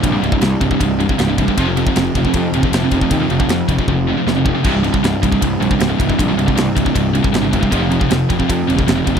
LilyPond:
<<
  \new Staff \with { instrumentName = "Distorted electric guitar" } { \clef bass \time 4/4 \key f \dorian \tempo 4 = 156 <c, g, c>2.~ <c, g, c>8 <c, g, c>8 | <f, c f>2.~ <f, c f>8 <f, c f>8 | <f, c f>2.~ <f, c f>8 <f, c f>8 | <c, g, c>2.~ <c, g, c>8 <c, g, c>8 |
<c, g, c>2.~ <c, g, c>8 <c, g, c>8 | <f, c f>2.~ <f, c f>8 <f, c f>8 | }
  \new Staff \with { instrumentName = "Distorted electric guitar" } { \clef bass \time 4/4 \key f \dorian <c, g,>16 <c, g,>16 <c, g,>16 <c, g,>16 <c, g,>8 <c, g,>16 <c, g,>16 <c, g,>8 <c, g,>16 <c, g,>16 <c, g,>16 <c, g,>16 <c, g,>16 <c, g,>16 | <f, c f>16 <f, c>16 <f, c>16 <f, c>16 <f, c>8 <f, c>16 <f, c>16 <f, c>8 <f, c>16 <f, c>16 <f, c>16 <f, c>16 <f, c>16 <f, c>16 | <f, c>16 <f, c>16 <f, c>16 <f, c>16 <f, c>8 <f, c>16 <f, c>16 <f, c>8 <f, c>16 <f, c>16 <f, c>16 <f, c>16 <f, c>16 <f, c>16 | <c, g, c>16 <c, g,>16 <c, g,>16 <c, g,>16 <c, g,>8 <c, g,>16 <c, g,>16 <c, g,>8 <c, g,>16 <c, g,>16 <c, g,>16 <c, g,>16 <c, g,>16 <c, g,>16 |
<c, g,>16 <c, g,>16 <c, g,>16 <c, g,>16 <c, g,>8 <c, g,>16 <c, g,>16 <c, g,>8 <c, g,>16 <c, g,>16 <c, g,>16 <c, g,>16 <c, g,>16 <c, g,>16 | <f, c f>16 <f, c>16 <f, c>16 <f, c>16 <f, c>8 <f, c>16 <f, c>16 <f, c>8 <f, c>16 <f, c>16 <f, c>16 <f, c>16 <f, c>16 <f, c>16 | }
  \new Staff \with { instrumentName = "Distorted electric guitar" } { \clef bass \time 4/4 \key f \dorian <c, g,>16 <c, g,>16 <c, g,>16 <c, g,>16 <c, g,>8 <c, g,>16 <c, g,>16 <c, g,>8 <c, g,>16 <c, g,>16 <c, g,>16 <c, g,>16 <c, g,>16 <c, g,>16 | <f, c f>16 <f, c>16 <f, c>16 <f, c>16 <f, c>8 <f, c>16 <f, c>16 <f, c>8 <f, c>16 <f, c>16 <f, c>16 <f, c>16 <f, c>16 <f, c>16 | <f, c>16 <f, c>16 <f, c>16 <f, c>16 <f, c>8 <f, c>16 <f, c>16 <f, c>8 <f, c>16 <f, c>16 <f, c>16 <f, c>16 <f, c>16 <f, c>16 | <c, g, c>16 <c, g,>16 <c, g,>16 <c, g,>16 <c, g,>8 <c, g,>16 <c, g,>16 <c, g,>8 <c, g,>16 <c, g,>16 <c, g,>16 <c, g,>16 <c, g,>16 <c, g,>16 |
<c, g,>16 <c, g,>16 <c, g,>16 <c, g,>16 <c, g,>8 <c, g,>16 <c, g,>16 <c, g,>8 <c, g,>16 <c, g,>16 <c, g,>16 <c, g,>16 <c, g,>16 <c, g,>16 | <f, c f>16 <f, c>16 <f, c>16 <f, c>16 <f, c>8 <f, c>16 <f, c>16 <f, c>8 <f, c>16 <f, c>16 <f, c>16 <f, c>16 <f, c>16 r16 | }
  \new Staff \with { instrumentName = "Picked electric bass" } { \clef bass \time 4/4 \key f \dorian bes,,8 c,,8 c,8 c,,8 c,,4 c,,4 | f,,4 f,,8 f,,8 f,8 ees,,8 f,,8 f,,8 | ees,8 f,,8 f,8 f,,8 f,,4 f,,4 | c,,4 c,,8 c,,8 c,8 bes,,8 c,,8 c,,8 |
bes,,8 c,,8 c,8 c,,8 c,,4 g,,4 | f,,4 f,,8 f,,8 f,8 ees,,8 f,,8 f,,8 | }
  \new DrumStaff \with { instrumentName = "Drums" } \drummode { \time 4/4 <bd cymr>8 cymr16 bd16 <cymr sn>8 <bd cymr>16 bd16 <bd cymr>8 cymr16 bd16 <cymr sn>8 <bd cymr>16 bd16 | <bd cymr>8 cymr16 bd16 <cymr sn>8 <bd cymr>16 bd16 <bd cymr>8 cymr16 bd16 <cymr sn>8 <bd cymr>16 bd16 | <bd cymr>8 cymr16 bd16 <cymr sn>8 <bd cymr>16 bd16 <bd tommh>4 sn8 bd8 | <cymc bd>8 cymr16 bd16 <cymr sn>8 <bd cymr>16 bd16 <bd cymr>8 cymr16 bd16 <cymr sn>8 <bd cymr>16 bd16 |
<bd cymr>8 cymr16 bd16 <cymr sn>8 <bd cymr>16 bd16 <bd cymr>8 cymr16 bd16 <cymr sn>8 <bd cymr>16 bd16 | <bd cymr>8 cymr16 bd16 <cymr sn>8 <bd cymr>16 bd16 <bd cymr>8 cymr16 bd16 <cymr sn>8 <bd cymr>16 bd16 | }
>>